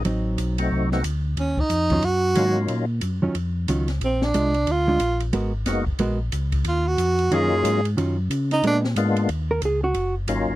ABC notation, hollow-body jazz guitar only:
X:1
M:4/4
L:1/8
Q:"Swing" 1/4=182
K:Ebdor
V:1 name="Hollow-body jazz guitar"
[^F,CE]4- [F,CE] z3 | z3 [E,G,DF] z2 [E,G,DF] z | z3 [E,G,DF] z2 [E,G,DF] z | z2 [A,=DF] z2 [A,DF] z2 |
[A,_CGB] z3 [A,CGB] z3 | z4 [E,G,DF] z3 | [E,G,DF] z3 [A,_C=D] z3 | z B A G2 z3 |]